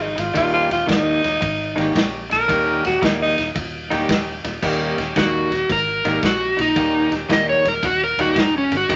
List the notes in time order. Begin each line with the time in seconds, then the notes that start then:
Already playing: G#1 F#4 G#4
0.02 D#4
0.16 G#1 F4, muted clean electric guitar stroke, snare, ride
0.34 D#1 D#3 G3 A#3 C#4 D#4 F4 G4, kick, ride
0.53 F4
0.69 D#1 F4, muted clean electric guitar stroke, snare, ride
0.86 D#1 D#3 G3 A#3 D#4, kick, ride
0.90 snare
1.23 D#1, muted clean electric guitar stroke, snare, ride
1.40 G#1, muted clean electric guitar stroke, kick, ride
1.76 G#1 D#3 G3 A#3 C#4 D#4 G4, snare, ride
1.94 A#1, muted clean electric guitar stroke, kick, snare, ride
2.30 A#1 A#4, muted clean electric guitar stroke, snare, ride
2.48 D#1 D#3 G3 A#3 C#4 D#4 G4, kick, snare, ride
2.84 D#1 F#4, muted clean electric guitar stroke, snare, ride
3.01 D#1 D#3 G3 A#3 D#4, kick, snare, ride
3.22 D#4
3.37 D#1, muted clean electric guitar stroke, snare, ride
3.55 D#1, muted clean electric guitar stroke, kick, ride
3.90 D#1 D#3 G3 A#3 C#4 D#4 G4, snare, ride
4.09 D#1, muted clean electric guitar stroke, kick, snare, ride
4.44 D#1, muted clean electric guitar stroke, snare, ride
4.62 D#1 D#3 G3 A#3 C#4 D#4 G4, kick, crash
4.98 D#1, muted clean electric guitar stroke, snare, ride
5.16 D#1 D#3 G3 A#3 D#4 F#4, kick, snare, ride
5.51 D#1, muted clean electric guitar stroke, snare, ride
5.69 G#1 A#4, muted clean electric guitar stroke, kick, snare, ride
6.05 G#1 D#3 G3 A#3 C#4 D#4 G4, snare, ride
6.22 A#1 F#4, muted clean electric guitar stroke, kick, snare, ride
6.57 A#1, muted clean electric guitar stroke, snare, ride
6.61 D#4
6.76 D#1 D#3 G3 A#3 C#4 D#4 G4, kick, snare, ride
7.11 D#1, muted clean electric guitar stroke, snare, ride
7.29 D#1 D#3 G3 A#3 D#4 D#5, kick, snare, ride
7.49 C#5
7.65 D#1 A#4, muted clean electric guitar stroke, snare, ride
7.83 D#1 F#4, muted clean electric guitar stroke, kick, snare, ride
8.04 A#4
8.17 D#1 D#3 G3 A#3 C#4 D#4 F#4 G4, snare, ride
8.36 D#1 D#4, muted clean electric guitar stroke, kick, snare, ride
8.58 C#4
8.71 G1, muted clean electric guitar stroke, snare, ride
8.77 F#4
8.89 G#1 D#3 G#3 C4 D#4 F#4 G#4, kick, snare, ride